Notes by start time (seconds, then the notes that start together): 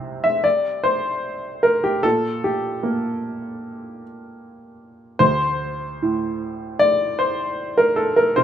Already playing: C2 C3 C5
0.24 E5
0.44 D5
0.84 C5
1.63 A#4
1.84 G4
2.03 A#2 A4
2.44 G4
2.83 A#3
5.19 D2 C5
6.02 A2
6.79 D5
7.19 C5
7.78 A#4
7.96 A4
8.16 A#4
8.36 C3 C5